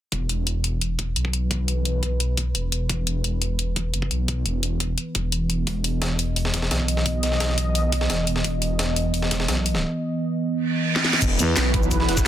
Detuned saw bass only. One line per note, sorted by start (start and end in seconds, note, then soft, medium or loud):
0.12 0.97 E1 loud
0.99 1.15 E1 medium
1.16 2.53 B1 medium
2.55 2.88 E1 medium
2.89 3.75 E1 medium
3.76 3.92 E1 medium
3.94 4.10 F#1 medium
4.11 4.44 B1 loud
4.46 4.96 E1 medium
5.15 5.66 E1 loud
5.67 6.52 E1 medium
6.54 6.70 E1 loud
6.71 8.08 B1 medium
8.10 8.43 E1 medium
8.44 9.30 E1 medium
9.31 9.47 E1 loud
9.48 9.83 B1 medium
11.22 11.38 E1 medium
11.57 12.07 B1 loud
12.09 12.28 E1 loud